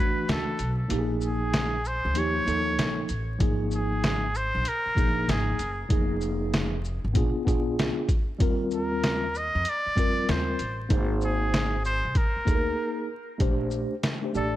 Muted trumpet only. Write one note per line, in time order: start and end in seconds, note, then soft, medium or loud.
0.00 0.29 B4 loud
0.31 0.77 A4 medium
1.25 1.88 G#4 medium
1.87 2.20 C5 medium
2.18 3.11 C#5 loud
3.74 4.38 G#4 medium
4.36 4.70 C5 loud
4.68 5.31 A#4 loud
5.30 5.80 G#4 medium
8.74 9.39 A#4 medium
9.37 9.71 D#5 loud
9.69 10.32 D5 loud
10.31 10.81 C5 medium
11.24 11.81 G#4 medium
11.86 12.18 C5 loud
12.17 13.10 A#4 medium
14.36 14.54 A4 medium